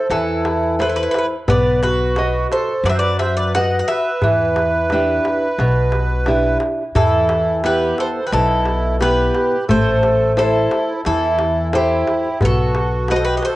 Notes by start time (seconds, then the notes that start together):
0.09 E2 E3 E4 A4, darbuka tek
0.28 darbuka tek
0.45 darbuka tek
0.63 darbuka tek
0.79 E4 A4 B4 C5, darbuka tek
0.89 B4
0.96 B4, darbuka tek
1.03 B4
1.11 B4, darbuka tek
1.18 B4
1.48 B1 B3 B4 D5, darbuka dum
1.83 F#4 B4, darbuka tek
2.00 darbuka tek
2.16 F#4 D#5, darbuka tek
2.35 darbuka tek
2.52 A4 C5, darbuka tek
2.69 darbuka tek
2.84 F#2 F#3 B4 D5, darbuka tek
2.90 C5 E5
2.99 B4 D5, darbuka tek
3.19 C5 E5, darbuka tek
3.37 B4 D5, darbuka tek
3.55 F#4 B4 D#5 F#5, darbuka tek
3.72 darbuka tek
3.79 D#5 F#5
3.88 B4 E5, darbuka tek
4.22 E2 E3, darbuka dum
4.39 darbuka tek
4.56 darbuka tek
4.90 D4 E4 G4, darbuka tek
5.08 darbuka tek
5.25 darbuka tek
5.58 B1 B2, darbuka tek
5.92 darbuka tek
6.10 darbuka tek
6.26 D4 E4 G4, darbuka tek
6.60 darbuka tek
6.95 E2 E3 E4 A4, darbuka dum
7.29 darbuka tek
7.63 B3 E4 G4 B4, darbuka tek
7.98 A4 C5, darbuka tek
8.26 G4 B4
8.32 B1 B2 E4 A4, darbuka tek
8.65 darbuka tek
9.00 B3 E4 G4 B4, darbuka tek
9.34 darbuka tek
9.52 darbuka tek
9.68 A1 A3 A4 C5, darbuka dum
10.03 darbuka tek
10.37 E4 A4 C5, darbuka tek
10.71 darbuka tek
11.05 E2 E3 E4 A4, darbuka tek
11.39 darbuka tek
11.73 E4 G4 A4 C5, darbuka tek
12.08 darbuka tek
12.25 darbuka tek
12.41 B1 B3 F#4, darbuka dum
12.45 A4
12.75 darbuka tek
13.08 F#4 B4 D#5, darbuka tek
13.16 A4 C5
13.25 G4 B4
13.37 B4 D#5
13.43 C5, darbuka tek
13.47 A4